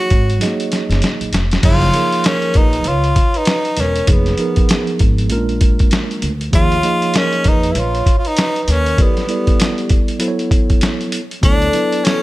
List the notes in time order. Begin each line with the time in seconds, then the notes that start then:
Already playing: F#4 C#5
0.10 G#1, kick, closed hi-hat
0.30 closed hi-hat
0.39 F#3 G#3 D#4 G#4 D#5, snare, closed hi-hat
0.46 A#3
0.60 closed hi-hat
0.72 snare, closed hi-hat
0.89 F#1, snare, closed hi-hat
1.02 snare, closed hi-hat
1.21 A#1, closed hi-hat
1.32 F1, snare, closed hi-hat
1.51 snare, closed hi-hat
1.61 F#1 F3 A#3 D#4 F4 G#4 C#5, kick, closed hi-hat, crash
1.82 closed hi-hat
1.92 F3 A#3 D#4 G#4 A#4, closed hi-hat
2.12 closed hi-hat
2.24 C#4 A#4, snare, closed hi-hat
2.42 closed hi-hat
2.54 A#1 D#4 B4, kick, closed hi-hat
2.73 closed hi-hat
2.84 C#2 F4 C#5, closed hi-hat
3.04 closed hi-hat
3.16 kick, closed hi-hat
3.34 D#4 B4, closed hi-hat
3.45 snare, closed hi-hat
3.65 closed hi-hat
3.77 E1 C#4 A#4, snare, closed hi-hat
3.96 closed hi-hat
4.06 F1 F3 A#3 D#4 G#4 C#5, kick, closed hi-hat
4.12 B3
4.26 snare, closed hi-hat
4.37 F3 B3 D#4 G#4 A#4, closed hi-hat
4.56 kick, closed hi-hat
4.69 snare, closed hi-hat
4.87 closed hi-hat
4.99 G#1, kick, closed hi-hat
5.18 closed hi-hat
5.29 A#1 G#3 A#3 C#4 F4 A#4, closed hi-hat
5.37 D4
5.49 closed hi-hat
5.61 kick, closed hi-hat
5.79 kick, closed hi-hat
5.91 snare, closed hi-hat
6.11 closed hi-hat
6.22 D2, closed hi-hat
6.41 closed hi-hat
6.51 D#2 F3 A#3 D#4 F4 G#4 C#5, kick, closed hi-hat
6.72 closed hi-hat
6.82 F3 A#3 D#4 G#4 D#5, closed hi-hat
7.02 closed hi-hat
7.14 C#4 A#4, snare, closed hi-hat
7.33 closed hi-hat
7.44 F2 D#4 B4, kick, closed hi-hat
7.63 closed hi-hat
7.70 E4 B4
7.75 A#1 C#5, closed hi-hat
7.79 F4
7.95 closed hi-hat
8.06 kick, closed hi-hat
8.19 F4
8.25 D#4 B4, closed hi-hat
8.37 snare, closed hi-hat
8.56 closed hi-hat
8.63 D#4
8.68 D#2 C#4 A#4, snare, closed hi-hat
8.86 closed hi-hat
8.97 F#3 B3 E4 G4 A4 D5, kick, closed hi-hat
9.02 B3
9.17 snare, closed hi-hat
9.27 G3 B3 E4 A4 D5, closed hi-hat
9.47 kick, closed hi-hat
9.60 snare, closed hi-hat
9.78 closed hi-hat
9.89 kick, closed hi-hat
10.08 closed hi-hat
10.19 F#3 B3 E4 A4 C5, closed hi-hat
10.28 C#5
10.39 closed hi-hat
10.51 kick, closed hi-hat
10.70 kick, closed hi-hat
10.81 snare, closed hi-hat
11.01 closed hi-hat
11.12 closed hi-hat
11.31 closed hi-hat
11.42 D2 F#3 B3 D4 E4 A4 C#5, kick, closed hi-hat
11.62 closed hi-hat
11.72 F#3 B3 E4 A4 B4, closed hi-hat
11.92 closed hi-hat
12.04 C#4 A4, snare, closed hi-hat